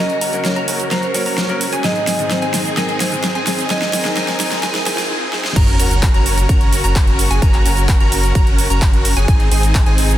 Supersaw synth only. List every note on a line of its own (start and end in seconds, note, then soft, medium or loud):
0.00 0.19 C#4 medium
0.00 0.19 F#4 medium
0.00 0.19 A#4 loud
0.21 0.53 C#4 medium
0.21 0.53 F#4 medium
0.21 0.53 A#4 medium
0.56 0.88 C#4 medium
0.56 0.88 F#4 medium
0.56 0.88 A#4 loud
0.91 1.23 C#4 medium
0.91 1.23 F#4 medium
0.91 1.23 A#4 medium
1.26 1.70 C#4 medium
1.26 1.70 F#4 medium
1.26 1.70 A#4 medium
1.72 1.82 C#4 medium
1.72 1.82 F#4 medium
1.72 1.82 G#4 loud
1.84 2.05 C4 medium
1.84 2.05 D#4 medium
1.84 2.05 G#4 medium
2.07 2.39 C4 medium
2.07 2.39 D#4 medium
2.07 2.39 G#4 medium
2.42 2.74 C4 medium
2.42 2.74 D#4 medium
2.42 2.74 G#4 loud
2.77 2.98 C4 medium
2.77 2.98 D#4 medium
2.77 2.98 G#4 loud
3.00 3.33 C4 medium
3.00 3.33 D#4 medium
3.00 3.33 G#4 medium
3.35 3.67 C4 medium
3.35 3.67 D#4 medium
3.35 3.67 G#4 loud
3.70 3.91 C4 medium
3.70 3.91 D#4 medium
3.70 3.91 G#4 loud
3.93 4.15 C4 medium
3.93 4.15 D#4 medium
3.93 4.15 G#4 medium
4.17 4.37 C4 medium
4.17 4.37 D#4 medium
4.17 4.37 G#4 loud
4.40 4.61 C4 medium
4.40 4.61 D#4 medium
4.40 4.61 G#4 medium
4.63 4.84 C4 loud
4.63 4.84 D#4 medium
4.63 4.84 G#4 loud
4.86 5.07 C4 medium
4.86 5.07 D#4 medium
4.86 5.07 G#4 loud
5.10 5.30 C4 loud
5.10 5.30 D#4 medium
5.10 5.30 G#4 loud
5.33 5.53 C4 loud
5.33 5.53 D#4 medium
5.33 5.53 G#4 loud
5.56 5.77 C#4 loud
5.56 5.77 F#4 medium
5.56 5.77 A#4 loud
5.79 6.12 C#4 medium
5.79 6.12 F#4 medium
5.79 6.12 A#4 medium
6.14 6.46 C#4 medium
6.14 6.46 F#4 medium
6.14 6.46 A#4 loud
6.49 6.81 C#4 medium
6.49 6.81 A#4 medium
6.84 7.28 C#4 medium
6.84 7.28 F#4 medium
6.84 7.28 A#4 medium
7.31 7.40 C#4 medium
7.31 7.40 F#4 medium
7.31 7.40 G#4 medium
7.42 7.63 C#4 loud
7.42 7.63 F#4 medium
7.42 7.63 A#4 loud
7.65 7.98 C#4 medium
7.65 7.98 F#4 medium
7.65 7.98 A#4 medium
8.00 8.32 C#4 loud
8.00 8.32 F#4 medium
8.00 8.32 A#4 loud
8.35 8.67 C#4 medium
8.35 8.67 F#4 medium
8.35 8.67 A#4 medium
8.70 9.14 C#4 medium
8.70 9.14 F#4 medium
8.70 9.14 A#4 medium
9.17 9.27 C#4 medium
9.17 9.27 F#4 medium
9.17 9.27 G#4 loud
9.28 9.49 C4 medium
9.28 9.49 D#4 medium
9.28 9.49 G#4 loud
9.52 9.84 C4 medium
9.52 9.84 D#4 medium
9.52 9.84 G#4 medium
9.86 10.18 C4 loud
9.86 10.18 D#4 medium
9.86 10.18 G#4 loud